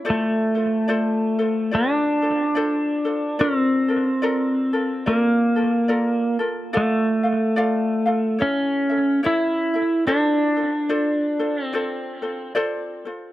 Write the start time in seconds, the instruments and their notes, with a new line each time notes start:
0.05 ukulele F4 A4 C5 D5
0.10 pedal steel guitar A3
0.55 ukulele F4 A4 C5
0.88 ukulele F4 A4 C5 D5
1.39 ukulele F4 A4 C5
1.71 pedal steel guitar D4, ukulele F4 A4 C5 D5
2.22 ukulele F4 A4 C5
2.55 ukulele F4 A4 C5 D5
3.05 ukulele F4 A4 C5
3.39 pedal steel guitar C4, ukulele F4 A4 A#4 D5
3.88 ukulele F4 A4 A#4
4.22 ukulele F4 A4 A#4 D5
4.73 ukulele F4 A4 A#4
5.06 pedal steel guitar A#3, ukulele F4 A4 A#4 D5
5.56 ukulele F4 A4 A#4
5.88 ukulele F4 A4 A#4 D5
6.39 ukulele F4 A4 A#4
6.73 pedal steel guitar A3, ukulele F4 A4 D5 F5
7.23 ukulele F4 A4 F5
7.56 ukulele F4 A4 D5 F5
8.06 ukulele F4 A4 F5
8.39 pedal steel guitar C#4, ukulele E4 A4 C#5 E5
8.90 ukulele E4 A4 E5
9.23 ukulele E4 A4 C#5 E5, pedal steel guitar E4
9.74 ukulele E4 A4 E5
10.07 pedal steel guitar D4, ukulele F4 A4 C5 D5
10.57 ukulele F4 A4 C5
10.89 ukulele F4 A4 C5 D5
11.39 ukulele F4 A4 C5
11.64 pedal steel guitar C4
11.73 ukulele F4 A4 C5 D5
12.22 ukulele F4 A4 C5
12.55 ukulele F4 A4 C5 D5
13.05 ukulele F4 A4 C5